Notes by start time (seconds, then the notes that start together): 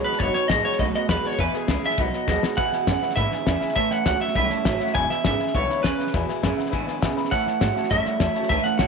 Already playing: B2 G#3
0.04 B3 D#4 F#4 B4 D#5 F#5, muted upright bass stroke, snare
0.12 snare
0.19 F#1 B2 F#3 B3 D#4 F#4 B4 C#5 D#5 F#5, kick, snare
0.34 B3 D#4 F#4 B4 C#5 D#5 F#5, snare
0.48 A1 B2 F#3 G#3 B3 D#4 F#4 B4 D#5 G#5, kick, snare, hi-hat pedal
0.63 B3 D#4 F#4 B4 C#5 D#5 F#5, muted upright bass stroke, snare
0.72 snare
0.78 B1 B2 F#3 A3 B3 D#4 F#4 B4 D#5 F#5, kick, snare
0.93 B3 D#4 F#4 B4 D#5 F#5, muted upright bass stroke, snare
1.08 D#2 B2 F#3 G#3 B3 D#4 F#4 B4 D#5 F#5, kick, snare, hi-hat pedal
1.23 B3 D#4 F#4 B4 C#5 D#5 F#5, muted upright bass stroke, snare
1.32 snare
1.38 E2 B2 E3 B3 E4 G#4 B4 E5 G#5, kick, snare
1.53 E3 B3 E4 G#4 B4 E5 G#5, muted upright bass stroke, snare
1.68 C#2 E2 C#3 E3 B3 E4 G#4 B4 E5 B5, kick, snare, hi-hat pedal
1.83 E3 B3 E4 G#4 B4 E5 G#5, muted upright bass stroke, snare
1.91 snare
1.98 B1 B2 F#3 B3 D#4 F#4 B4 D#5 F#5, kick, snare
2.13 B3 D#4 F#4 B4 D#5 F#5, muted upright bass stroke, snare
2.27 D#2 B2 F#3 G#3 B3 D#4 F#4 B4 D#5 F#5, kick, snare, hi-hat pedal
2.41 B3 D#4 F#4 B4 D#5 F#5, snare
2.57 E2 B2 E3 G#3 B3 E4 B4 E5 F#5 G#5, kick, snare
2.72 E3 G#3 B3 E4 B4 E5 G#5, muted upright bass stroke, snare
2.87 E2 F#2 C#3 E3 G#3 B3 E4 B4 E5 G#5, kick, snare, hi-hat pedal
3.01 E3 G#3 B3 E4 B4 E5 F#5, snare
3.10 snare
3.16 E2 G#2 B2 D3 E3 G#3 B3 E4 B4 E5 B5, kick, snare
3.31 E3 G#3 B3 E4 B4 E5 G#5, muted upright bass stroke, snare
3.46 E2 C#3 E3 G#3 B3 E4 B4 E5 G#5, kick, snare, hi-hat pedal
3.60 E3 G#3 B3 E4 B4 E5 G#5, muted upright bass stroke, snare
3.69 snare
3.75 A1 A2 E3 A3 C#4 E4 C#5 E5 A5, kick, snare
3.91 A3 C#4 E4 C#5 E5 F#5 A5, snare
4.05 C#2 A2 E3 F#3 A3 C#4 E4 C#5 E5 F#5 A5, kick, snare, hi-hat pedal
4.20 A3 C#4 E4 C#5 E5 F#5, muted upright bass stroke, snare
4.28 snare
4.35 B1 A2 E3 G3 A3 C#4 E4 C#5 E5 B5, kick, snare
4.50 A3 C#4 E4 C#5 E5 A5, muted upright bass stroke, snare
4.65 A1 A2 E3 F#3 A3 C#4 E4 C#5 E5 A5, kick, snare, hi-hat pedal
4.79 A3 C#4 E4 C#5 E5 F#5, muted upright bass stroke, snare
4.87 snare
4.94 E1 E2 B2 E3 G#3 B3 E4 B4 E5 G#5, kick, snare
5.10 E3 G#3 B3 E4 B4 E5 G#5, snare
5.24 G#1 E2 C#3 E3 G#3 B3 E4 B4 E5 G#5, kick, snare, hi-hat pedal
5.39 E3 G#3 B3 E4 B4 E5 G#5, snare
5.47 snare
5.54 B1 E2 B2 D3 E3 G#3 B3 E4 B4 C#5 E5 F#5, kick, snare
5.69 E3 G#3 B3 E4 B4 E5 B5, muted upright bass stroke, snare
5.83 D#2 E2 C#3 G#3 B3 E4 B4 E5 G#5, kick, snare, hi-hat pedal
5.98 E3 G#3 B3 E4 B4 E5 G#5, muted upright bass stroke, snare
6.07 snare
6.12 E2 B2 E3 G#3 B3 E4 B4 E5 G#5, kick, snare
6.28 E3 G#3 B3 E4 B4 E5 G#5, muted upright bass stroke, snare
6.42 E2 F#2 C#3 E3 G#3 B3 E4 B4 E5 G#5, kick, snare, hi-hat pedal
6.56 E3 G#3 B3 E4 B4 E5 F#5, muted upright bass stroke, snare
6.66 snare
6.70 E2 G#2 B2 D3 E3 G#3 B3 E4 B4 E5 G#5, kick, snare
6.86 E3 G#3 B3 E4 B4 E5 G#5, muted upright bass stroke, snare
7.01 E2 B2 C#3 E3 G#3 B3 E4 B4 E5 G#5, kick, snare, hi-hat pedal
7.16 E3 G#3 B3 E4 B4 E5 B5, snare
7.25 snare
7.31 A2 E3 A3 C#4 E4 C#5 E5 F#5 A5, kick, snare
7.45 A3 C#4 E4 C#5 E5 A5, muted upright bass stroke, snare
7.60 G#2 A2 E3 F#3 A3 C#4 E4 C#5 E5 A5, kick, snare, hi-hat pedal
7.75 A3 C#4 E4 C#5 E5 A5, muted upright bass stroke, snare
7.83 snare
7.90 F#2 A2 E3 G3 A3 C#4 E4 C#5 E5 A5, kick, snare
8.04 A3 C#4 E4 C#5 E5 F#5, muted upright bass stroke, snare
8.20 E2 A2 E3 F#3 A3 C#4 E4 C#5 E5 A5, kick, snare, hi-hat pedal
8.34 A3 C#4 E4 C#5 E5 A5, muted upright bass stroke, snare
8.43 snare
8.49 C#2 A2 E3 A3 C#4 E4 C#5 E5 A5, kick, snare
8.63 A3 C#4 E4 C#5 E5 F#5 A5, muted upright bass stroke, snare
8.78 A1 A2 E3 F#3 C#4 E4 C#5 E5 F#5 A5, kick, snare, hi-hat pedal